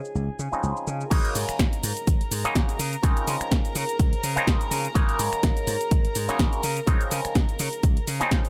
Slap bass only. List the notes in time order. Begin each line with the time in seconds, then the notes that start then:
0.15 C#2
0.29 muted slap bass stroke
0.39 C#3
0.53 muted slap bass stroke
0.63 C#2
0.87 C#3
1.11 G#1
1.35 G#2
1.49 muted slap bass stroke
1.59 G#1
1.83 G#2
2.07 G#1
2.21 muted slap bass stroke
2.31 G#2
2.45 muted slap bass stroke
2.55 G#1
2.79 C#3
3.03 C#2
3.27 C#3
3.41 muted slap bass stroke
3.51 C#2
3.75 C#3
3.99 C#2
4.13 muted slap bass stroke
4.23 C#3
4.37 muted slap bass stroke
4.47 C#2
4.71 C#3
4.95 G#1
5.19 G#2
5.33 muted slap bass stroke
5.43 G#1
5.67 G#2
5.91 G#1
6.05 muted slap bass stroke
6.16 G#2
6.29 muted slap bass stroke
6.39 G#1
6.64 C#3
6.87 C#2
7.12 C#3
7.25 muted slap bass stroke
7.35 C#2
7.60 C#3
7.83 C#2
7.97 muted slap bass stroke
8.07 C#3
8.21 muted slap bass stroke
8.31 C#2